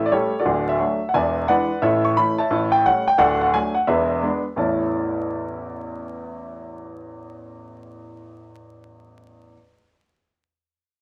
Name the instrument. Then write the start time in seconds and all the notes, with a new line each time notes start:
grand piano
Already playing: A1 A2 A4 C#5 E5
0.06 D5
0.12 G3 A3 C#4 G4 A4 C#5
0.39 F#4 A4 D5
0.45 D1 D2
0.69 E5
0.80 F#3 A3 D4
1.09 F#5
1.14 E1 E2 D5 E5 G#5
1.48 E3 G#3 D4 B4 D5 F#5
1.82 A1 A2 A4 C#5 E5
2.05 C#6
2.17 E3 A3 C#4 B5
2.38 C#5 E5 A5
2.50 A1 A2
2.72 G5
2.85 G3 A3 C#4 F#5
3.08 G5
3.18 D1 D2 A4 D5 F#5
3.41 F#5
3.53 F#3 A3 D4 G#5
3.74 F#5
3.87 E1 E2 G#4 B4 E5
4.23 G#3 B3 D4
4.56 A1 E2 E3 A3 C#4 E4 A5